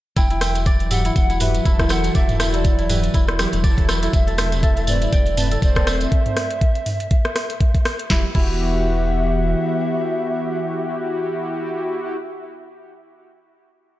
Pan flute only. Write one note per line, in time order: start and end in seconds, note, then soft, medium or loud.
0.17 0.63 G5 loud
0.91 1.14 F#5 loud
1.16 1.43 F#5 loud
1.41 1.92 E5 loud
1.91 2.17 F#5 loud
2.15 2.54 E5 loud
2.54 3.49 D5 medium
4.14 4.90 E5 loud
4.88 5.62 D5 loud
5.63 6.03 D5 loud
6.01 7.85 E5 loud
8.10 8.25 E5 medium
8.35 12.16 E5 loud